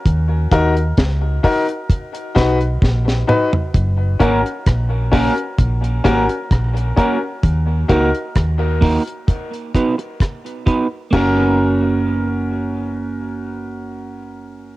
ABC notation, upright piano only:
X:1
M:4/4
L:1/8
Q:1/4=65
K:F#
V:1 name="Upright piano"
z [DFA] z [DFA] z [DFB] z [DFB] | z [CFA] z [CFA] z [CFA] z [CFA] | z [DFA] z6 | [CFA]8 |]